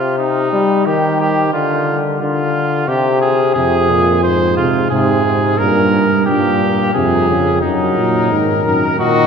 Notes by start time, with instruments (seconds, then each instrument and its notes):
Already playing: trombone C3, trumpet F4
0.18 trumpet D#4
0.53 trombone G3
0.86 trombone D#3, trumpet G4
1.20 trumpet G4
1.53 trombone D3, trumpet F4
2.20 trombone D3, trumpet F4
2.88 trombone C3, trumpet G4
3.21 trumpet G#4
3.54 bass trombone F2, trombone C3, trumpet G#4
3.90 trombone A#2
4.23 trombone G#2, trumpet C5
4.57 bass trombone C3, trumpet F4
4.90 bass trombone G#2, trombone C3, trumpet G#4
5.25 trombone C3
5.58 bass trombone G2, trombone A#2, trumpet A#4
6.26 bass trombone G2, trombone A#2, trumpet G4
6.94 bass trombone F2, trombone C3, trumpet G#4
7.29 trombone C#3
7.62 bass trombone F#2, trombone F#3, trumpet D#4 A#4
7.97 bass trombone A#2
8.31 bass trombone G#2, trombone D#3
8.65 bass trombone F#2, trumpet A#4
8.99 bass trombone A#2, trombone D#3, trumpet F#4 D#5